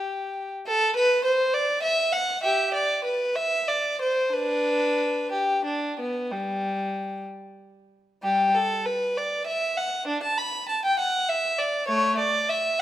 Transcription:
Already playing: G4
0.67 A4
0.96 B4
1.24 C5
1.54 D5
1.83 E5
2.12 F#5
2.43 G4 E5
2.74 D5
3.04 B4
3.35 E5
3.68 D5
4.01 C5
4.33 D4 B4
5.31 G4
5.65 D4
5.99 B3
6.31 G3
8.23 G3 G4
8.55 A4
8.85 B4
9.17 D5
9.46 E5
9.77 F#5
10.07 D4
10.23 A5
10.38 B5
10.69 A5
10.85 G5
10.99 F#5
11.29 E5
11.59 D5
11.88 A3 C#5
12.18 D5
12.49 E5

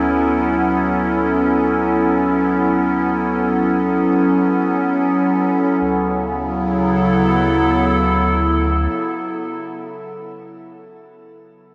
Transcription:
Already playing: D2 F#3 B3 C#4 E4 A4
5.81 D2 C#3
5.96 F#3
6.12 B3
6.26 E4
6.44 A4

